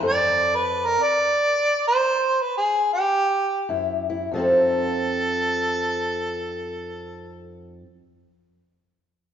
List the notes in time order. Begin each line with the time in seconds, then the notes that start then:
0.02 F2 A4
0.06 D5
0.55 B4
0.86 A#4
1.03 D5
1.88 C5
2.42 B4
2.57 G#4
2.93 G4
3.69 F#2 E4
4.10 E4
4.31 F2 F3 A4
4.35 C4 D#4
4.40 A4